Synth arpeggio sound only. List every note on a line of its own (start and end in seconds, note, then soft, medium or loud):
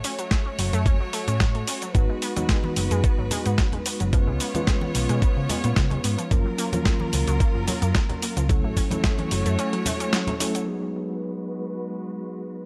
0.04 0.08 C#4 loud
0.19 0.27 F#3 medium
0.31 0.41 A3 medium
0.46 0.49 C#4 medium
0.59 0.63 F#3 medium
0.73 0.82 A3 loud
0.86 0.92 C#4 loud
1.00 1.06 F#3 medium
1.13 1.17 A3 loud
1.28 1.36 C#4 medium
1.41 1.44 F#3 medium
1.55 1.58 A3 medium
1.68 1.72 C#4 medium
1.82 1.88 F#3 medium
1.95 2.01 F#3 loud
2.09 2.15 G#3 medium
2.22 2.26 B3 loud
2.37 2.45 F#3 medium
2.49 2.59 G#3 medium
2.64 2.67 B3 medium
2.77 2.81 F#3 medium
2.91 3.00 G#3 loud
3.04 3.10 B3 loud
3.18 3.24 F#3 medium
3.31 3.35 G#3 loud
3.46 3.54 B3 medium
3.59 3.62 F#3 medium
3.73 3.77 G#3 medium
3.86 3.90 B3 medium
4.00 4.06 F#3 medium
4.13 4.20 F3 loud
4.27 4.33 G#3 medium
4.40 4.44 B3 loud
4.55 4.63 F3 medium
4.67 4.77 G#3 medium
4.82 4.85 B3 medium
4.95 4.99 F3 medium
5.09 5.18 G#3 loud
5.22 5.29 B3 loud
5.37 5.42 F3 medium
5.49 5.53 G#3 loud
5.64 5.73 B3 medium
5.76 5.80 F3 medium
5.91 5.95 G#3 medium
6.04 6.08 B3 medium
6.18 6.24 F3 medium
6.31 6.38 F3 loud
6.46 6.51 F#3 medium
6.58 6.62 A#3 loud
6.73 6.82 F3 medium
6.86 6.95 F#3 medium
7.00 7.04 A#3 medium
7.13 7.17 F3 medium
7.28 7.36 F#3 loud
7.40 7.47 A#3 loud
7.55 7.60 F3 medium
7.67 7.71 F#3 loud
7.82 7.91 A#3 medium
7.95 7.99 F3 medium
8.09 8.13 F#3 medium
8.22 8.26 A#3 medium
8.37 8.42 F3 medium
8.50 8.56 F#3 loud
8.64 8.70 A3 medium
8.77 8.81 C#4 loud
8.91 9.00 F#3 medium
9.04 9.14 A3 medium
9.19 9.22 C#4 medium
9.31 9.35 F#3 medium
9.46 9.54 A3 loud
9.59 9.65 C#4 loud
9.73 9.79 F#3 medium
9.86 9.90 A3 loud
10.00 10.09 C#4 medium
10.13 10.17 F#3 medium
10.28 10.31 A3 medium
10.40 10.44 C#4 medium
10.55 10.61 F#3 medium